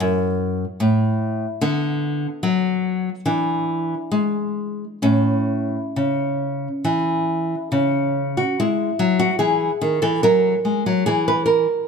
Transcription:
Already playing: B3
0.00 F#2
0.80 A2
1.61 D3 B3
2.43 F#3
3.26 E3 D4
4.12 G#3
5.02 A2 C#4
5.96 C#3
6.84 E3
7.72 C#3
8.37 F#4
8.60 G#3 E4
8.99 F#3
9.19 F#4
9.39 E3 G#4
9.81 D#3
10.02 E3 A4
10.23 F#3 A#4
10.65 G#3
10.86 F#3
11.06 E3 G#4
11.28 B4
11.46 A#4

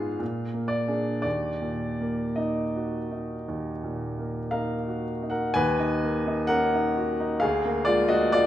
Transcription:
Already playing: G#2 B3 F4 G#4 F5
0.19 A#2
0.54 A#3
0.68 D5
0.88 D4 G#4
1.22 D#2 D5
1.62 A#2
2.00 A#3
2.36 D#4 D#5
2.76 F#4
3.11 D#4
3.48 D#2
3.84 A#2
4.18 A#3
4.51 D#4 A#4 F5
4.88 F#4
5.23 D#4
5.30 A#4 F#5
5.54 D#2 B4 G#5
5.79 D#4
6.04 A#3
6.27 D#4
6.47 C#4 A#4 F#5
6.75 D#4
6.98 F#4
7.20 D#4
7.40 D2 G#4 F5
7.65 A#3
7.85 G#3 F4 D5
8.08 A#3 F#4 D#5
8.32 G#3 F4 D5

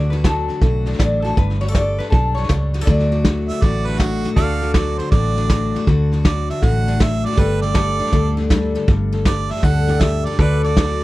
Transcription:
Already playing: D2 D3 D4 F#4
0.10 F#4 B4, snare
0.24 F#3 A4, kick, snare, hi-hat pedal
0.48 D4, snare
0.61 B1 A2 F#4, kick, snare
0.85 D4, snare
0.93 snare
0.99 A1 F#3 D5, kick, snare, hi-hat pedal
1.22 F#4 A4, snare
1.37 G1 G2 B4, kick, snare
1.50 snare
1.61 F#4 C#5, snare
1.68 A4 D5
1.75 G3, kick, snare, hi-hat pedal
1.98 D4 B4, snare
2.10 B1 D4 A4, kick, snare
2.35 D4 C#5, snare
2.43 snare
2.49 C#2 G3, kick, snare, hi-hat pedal
2.73 F#4, snare
2.80 A4, snare
2.85 D2 D3 F#3 A3 D5, kick, snare
2.90 D4 F#4
2.99 snare
3.11 F#4, snare
3.25 F#3, kick, snare, hi-hat pedal
3.48 D4 E5, snare
3.62 A1 A2 F#4 D5, kick, snare
3.87 D4 B4, snare
3.93 snare
3.99 F#3 F#4, kick, snare, hi-hat pedal
4.24 F#4, snare
4.36 D2 D3 F#4 A4 D5 F5, kick, snare
4.61 F#4, snare
4.74 F#3 D5, kick, snare, hi-hat pedal
4.98 D4 C5, snare
5.11 A1 A2 F#4 D5, kick, snare
5.36 D4, snare
5.50 F#3, kick, snare, hi-hat pedal
5.74 F#4, snare
5.87 D2 D3, kick, snare
6.12 F#4, snare
6.25 F#3 D5, kick, snare, hi-hat pedal
6.49 D4 E5, snare
6.62 A1 A2 F#4 F#5, kick, snare
6.87 D4, snare
7.00 F#3 E5, kick, snare, hi-hat pedal
7.25 F#4 D5, snare
7.31 snare
7.36 G1 G2 G3 A3 D4 G4 A4 B4 D5, kick, snare
7.41 A4
7.62 A4 D5, snare
7.75 G3 A4 D5, kick, snare, hi-hat pedal
7.99 D4, snare
8.06 snare
8.13 D2 D3 A4, kick, snare
8.37 D4, snare
8.50 G3, kick, snare, hi-hat pedal
8.75 A4, snare
8.88 G1 G2, kick, snare
9.13 A4, snare
9.25 G3 D5, kick, snare, hi-hat pedal
9.49 D4 E5, snare
9.56 snare
9.62 D2 D3 A4 F#5, kick, snare
9.87 D4 G4 A4 D5, snare
10.01 G3 E5, kick, snare, hi-hat pedal
10.25 A4 D5, snare
10.31 snare
10.39 D2 D3 F#4 A4 B4 D5, kick, snare
10.63 F#4 D5, snare
10.77 F#3, kick, snare, hi-hat pedal
11.00 snare

